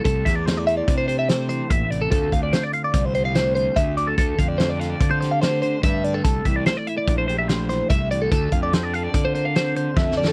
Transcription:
<<
  \new Staff \with { instrumentName = "Clean electric guitar" } { \time 5/4 \key d \minor \tempo 4 = 145 a'8 e''16 d''16 c''16 d''16 e''16 d''8 c''16 c''16 e''16 c''8 c''8 e''8 d''16 a'16 | a'8 f''16 d''16 c''16 d''16 f''16 d''8 c''16 c''16 f''16 c''8 c''8 e''8 d''16 a'16 | a'8 f''16 d''16 c''16 d''16 f''16 d''8 c''16 c''16 f''16 c''8 c''8 e''8 d''16 a'16 | a'8 e''16 d''16 c''16 d''16 e''16 d''8 c''16 c''16 e''16 c''8 c''8 e''8 d''16 a'16 |
a'8 f''16 d''16 c''16 d''16 f''16 d''8 c''16 c''16 f''16 c''8 c''8 e''8 d''16 a'16 | }
  \new Staff \with { instrumentName = "Clean electric guitar" } { \time 5/4 \key d \minor << { r4 a8 e'8 d'8 g'8 a2 | <d a c' f'>4 a8 f'8 c'8 g'8 a2 | r4 a8 f'8 c'8 g'8 a2 | r4 a8 e'8 d'8 g'8 a2 |
r4 c'8 a'8 f'8 bes'8 c'2 | } \\ { c8 e2. e8 bes,8 c8 | d,8 d2. d8 d,8 d8 | d,8 d2. d8 d,8 d8 | c8 e2. e8 c8 e8 |
d,8 d2. d8 d,8 d8 | } >> }
  \new Staff \with { instrumentName = "Fingered electric bass" } { \clef bass \time 5/4 \key d \minor c,8 e,4. c2 a,,4 | d,8 d,8 r4 c,2 d,4 | d,8 f,4. d2 g,4 | c,8 c,8 r4 bes,,2 c,4 |
d,8 f,4. d2 f,4 | }
  \new DrumStaff \with { instrumentName = "Drums" } \drummode { \time 5/4 <hh bd>8 <hh bd sn>8 <hh sn>8 hh8 <hh bd>8 hh8 <hh sn>8 hh8 <hh bd>8 hh8 | <hh bd>8 <hh bd>8 <hh sn>8 hh8 <hh bd>8 hh8 <hh sn>8 hh8 <hh bd>8 hh8 | <hh bd>8 <hh bd>8 <hh sn>8 <hh sn>8 <hh bd>8 <hh sn>8 <hh sn>8 hh8 <hh bd>8 hh8 | <hh bd>8 <hh bd>8 <hh sn>8 hh8 <hh bd>8 hh8 <hh sn>8 <hh sn>8 <hh bd>8 hh8 |
<hh bd>8 <hh bd>8 <hh sn>8 hh8 <hh bd>8 hh8 <hh sn>8 hh8 \tuplet 3/2 { <bd sn>8 sn8 sn8 } | }
>>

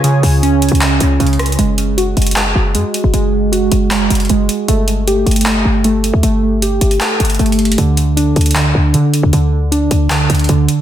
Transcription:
<<
  \new Staff \with { instrumentName = "Analog synth pad" } { \time 4/4 \key fis \minor \tempo 4 = 155 <eis' gis' cis'' gis''>1 | r1 | r1 | r1 |
r1 | r1 | r1 | }
  \new Staff \with { instrumentName = "Synth keys" } { \clef bass \time 4/4 \key fis \minor <cis cis'>4 cis'4 cis4 cis4 | gis4 fis'4 gis4 gis4 | gis4 fis'4 gis4 gis4 | a4 g'4 a4 a4 |
a4 g'4 a4 a4 | d4 d'4 d4 d4 | d4 d'4 d4 d4 | }
  \new Staff \with { instrumentName = "808-style bass" } { \clef bass \time 4/4 \key fis \minor r8 cis,4~ cis,16 cis,8. cis,8 cis,4 | fis,,4. fis,,4 fis,,8 fis,16 r8 fis,,16 | fis,,4. fis,,4 fis,,8 fis,,8 r8 | g,,4. g,,4 g,,4~ g,,16 d,16 |
g,,4. g,,8 r8 g,,8 g,,4 | d,4. d,4 d,8 d16 r8 d,16 | d,4. d,4 d,8 d,8 r8 | }
  \new DrumStaff \with { instrumentName = "Drums" } \drummode { \time 4/4 hh8 hho8 \tuplet 3/2 { hh16 r16 r16 hh16 hh16 hh16 } <hc hh>8 hh8 \tuplet 3/2 { hh16 hh16 hh16 <hh ss>16 hh16 hh16 } | hh8 hh8 hh8 hh32 hh32 hh32 hh32 <hc hh>4 hh8 hh8 | hh4 hh8 hh8 <hc hh>8 hh32 hh32 hh32 hh32 hh8 hh8 | hh8 hh8 hh8 hh32 hh32 hh32 hh32 <hc hh>4 hh8 hh8 |
hh4 hh8 hh16 hh16 <hc hh>8 hh32 hh32 hh32 hh32 \tuplet 3/2 { hh16 hh16 hh16 <hh hho>16 hh16 hh16 } | hh8 hh8 hh8 hh32 hh32 hh32 hh32 hc4 hh8 hh8 | hh4 hh8 hh8 <hc hh>8 hh32 hh32 hh32 hh32 hh8 hh8 | }
>>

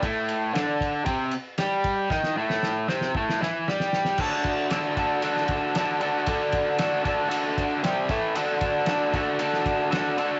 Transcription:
<<
  \new Staff \with { instrumentName = "Overdriven electric guitar" } { \time 4/4 \key d \lydian \tempo 4 = 115 <a, a>4 <d d'>4 <c c'>8 r8 <g g'>4 | <dis dis'>8 <a, a>4 <c c'>8 <a, a>8 <e e'>8 <g g'>4 | <d d' fis' a'>4 <d d' fis' a'>8 <d d' fis' a'>8 <d d' fis' a'>4 <d d' fis' a'>8 <d d' fis' a'>8 | <d d' fis' a'>4 <d d' fis' a'>8 <d d' fis' a'>8 <d d' fis' a'>4 <c g c' g'>8 <a, e a e' a'>8 |
<d d' fis' a'>4 <d d' fis' a'>8 <d d' fis' a'>8 <d d' fis' a'>4 <d d' fis' a'>8 <d d' fis' a'>8 | }
  \new DrumStaff \with { instrumentName = "Drums" } \drummode { \time 4/4 <bd cymr>8 cymr8 <cymr sn>8 <bd cymr>8 <bd cymr>8 cymr8 <cymr sn>8 <bd cymr>8 | <bd sn>16 sn8 sn16 sn8 sn16 sn16 bd16 sn16 sn8 sn16 sn16 sn16 sn16 | <cymc bd>8 <bd cymr>8 <cymr sn>8 <bd cymr>8 cymr16 sn16 <bd cymr>8 <cymr sn>8 cymr8 | <bd cymr>8 <bd cymr>8 <cymr sn>8 <bd cymr>8 cymr8 <bd cymr>8 <cymr sn>8 <bd cymr sn>8 |
cymr8 <bd cymr>8 <cymr sn>8 <bd cymr>8 cymr16 sn16 <bd cymr>8 <cymr sn>8 cymr8 | }
>>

